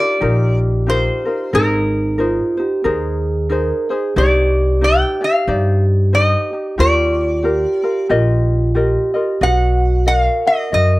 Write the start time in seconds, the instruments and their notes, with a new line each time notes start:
Already playing: ukulele D#4 F4 A#4, vibraphone G4
0.00 resonator guitar played with a steel bar D5
0.20 upright bass A#1, ukulele D#4 F4 G4 A#4
0.87 ukulele D#4 F4 G4 A#4, resonator guitar played with a steel bar C5
1.25 ukulele D#4 F4 A#4
1.53 upright bass G#1, ukulele D#4 G#4 A#4 C5, vibraphone D#4, resonator guitar played with a steel bar A#4
2.18 ukulele D#4 G#4 A#4 C5, vibraphone F4
2.57 ukulele D#4 C5, vibraphone G4
2.84 upright bass D#2, ukulele D#4 G#4 A#4 C5, vibraphone G#4
3.49 ukulele D#4 G#4 A#4 C5, vibraphone A#4
3.89 ukulele D#4 G#4 C5, vibraphone G#4
4.16 upright bass C2, ukulele D#4 G4 C5 D5, vibraphone G4, resonator guitar played with a steel bar D5
4.81 ukulele D#4 G4 C5 D5, resonator guitar played with a steel bar G5
5.21 ukulele D#4 G4 D5, resonator guitar played with a steel bar F5
5.47 upright bass G2, ukulele D#4 G4 C5 D5
6.13 ukulele D#4 G4 C5, resonator guitar played with a steel bar D#5
6.53 ukulele D#4 G4
6.78 upright bass D#2, vibraphone F4, ukulele F4 G4 A#4, resonator guitar played with a steel bar D5
7.43 ukulele F4 G4 A#4, vibraphone G4
7.84 ukulele F4 A#4
8.09 upright bass A#1, ukulele F4 G4 A#4 D#5, vibraphone F4
8.75 ukulele F4 G4 A#4 D#5, vibraphone G4
9.14 ukulele F4 A#4 D#5
9.41 upright bass B1, vibraphone F#4, ukulele F#4 B4 D#5 F#5, resonator guitar played with a steel bar F#5
10.06 ukulele F#4 D#5, vibraphone A#4, resonator guitar played with a steel bar F#5
10.19 resonator guitar played with a steel bar F5
10.47 ukulele F#4 F#5, resonator guitar played with a steel bar D#5
10.72 upright bass F#2, ukulele F#4 D#5, resonator guitar played with a steel bar D#5